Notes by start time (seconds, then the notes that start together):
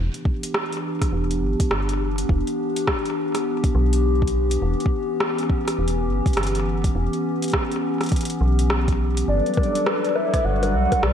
Already playing: E3 B3 D4 G4
0.14 closed hi-hat
0.25 kick
0.43 closed hi-hat
0.54 cross-stick
0.72 closed hi-hat
1.02 kick, cross-stick, closed hi-hat
1.13 E1
1.31 closed hi-hat
1.42 G1
1.60 kick, closed hi-hat
1.71 G1, cross-stick
1.89 closed hi-hat
2.18 closed hi-hat
2.29 E1, kick
2.47 closed hi-hat
2.76 closed hi-hat
2.87 kick, cross-stick
3.05 closed hi-hat
3.35 cross-stick, closed hi-hat
3.64 kick, closed hi-hat
3.75 B1
3.93 closed hi-hat
4.22 kick
4.28 closed hi-hat
4.51 closed hi-hat
4.62 E1 C#4
4.80 closed hi-hat
4.86 kick
5.20 cross-stick
5.38 closed hi-hat
5.50 kick
5.68 cross-stick, closed hi-hat
5.79 E1
5.88 closed hi-hat
6.08 G1
6.26 kick, closed hi-hat
6.33 G1, cross-stick, closed hi-hat
6.37 closed hi-hat
6.43 closed hi-hat
6.47 closed hi-hat
6.55 closed hi-hat
6.84 kick, closed hi-hat
6.95 E1
7.13 closed hi-hat
7.42 closed hi-hat
7.44 closed hi-hat
7.48 closed hi-hat
7.50 closed hi-hat
7.52 kick, cross-stick, closed hi-hat
7.72 closed hi-hat
8.01 cross-stick, closed hi-hat
8.03 closed hi-hat
8.06 closed hi-hat
8.09 kick, closed hi-hat
8.12 closed hi-hat
8.16 closed hi-hat
8.21 closed hi-hat
8.25 closed hi-hat
8.30 closed hi-hat
8.41 B1
8.59 closed hi-hat
8.70 cross-stick
8.88 kick, closed hi-hat
9.17 closed hi-hat
9.28 G1 F#3 G3 D4 A4 B4 D5
9.46 closed hi-hat
9.54 kick, closed hi-hat, high bongo
9.63 closed hi-hat
9.75 closed hi-hat
9.86 cross-stick, high bongo
10.04 closed hi-hat
10.16 E5, high bongo
10.34 kick, cross-stick, closed hi-hat
10.45 G1 F#5
10.63 closed hi-hat, high bongo
10.74 B1
10.92 kick, closed hi-hat, high bongo
11.03 B1 D5, cross-stick